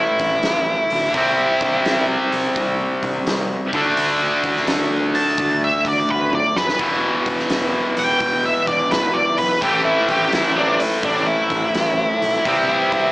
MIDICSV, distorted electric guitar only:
0, 0, Header, 1, 2, 480
1, 0, Start_track
1, 0, Tempo, 706714
1, 782, Time_signature, 4, 2, 24, 8
1, 8910, End_track
2, 0, Start_track
2, 0, Title_t, "Distorted electric guitar"
2, 0, Program_c, 0, 30
2, 0, Note_on_c, 0, 45, 71
2, 0, Note_on_c, 0, 52, 80
2, 0, Note_on_c, 0, 57, 82
2, 771, Note_off_c, 0, 45, 0
2, 774, Note_on_c, 0, 48, 80
2, 776, Note_off_c, 0, 52, 0
2, 781, Note_off_c, 0, 57, 0
2, 789, Note_on_c, 0, 55, 76
2, 796, Note_on_c, 0, 60, 89
2, 2514, Note_off_c, 0, 48, 0
2, 2522, Note_off_c, 0, 55, 0
2, 2525, Note_off_c, 0, 60, 0
2, 2539, Note_on_c, 0, 50, 76
2, 2551, Note_on_c, 0, 57, 89
2, 2559, Note_on_c, 0, 62, 98
2, 4437, Note_off_c, 0, 50, 0
2, 4444, Note_off_c, 0, 57, 0
2, 4448, Note_off_c, 0, 62, 0
2, 4610, Note_on_c, 0, 40, 75
2, 4622, Note_on_c, 0, 47, 85
2, 4633, Note_on_c, 0, 52, 78
2, 6524, Note_off_c, 0, 40, 0
2, 6530, Note_off_c, 0, 47, 0
2, 6534, Note_on_c, 0, 45, 87
2, 6545, Note_off_c, 0, 52, 0
2, 6547, Note_on_c, 0, 52, 85
2, 6555, Note_on_c, 0, 57, 85
2, 8448, Note_off_c, 0, 45, 0
2, 8455, Note_off_c, 0, 52, 0
2, 8455, Note_on_c, 0, 48, 78
2, 8458, Note_off_c, 0, 57, 0
2, 8471, Note_on_c, 0, 55, 84
2, 8478, Note_on_c, 0, 60, 101
2, 8910, Note_off_c, 0, 48, 0
2, 8910, Note_off_c, 0, 55, 0
2, 8910, Note_off_c, 0, 60, 0
2, 8910, End_track
0, 0, End_of_file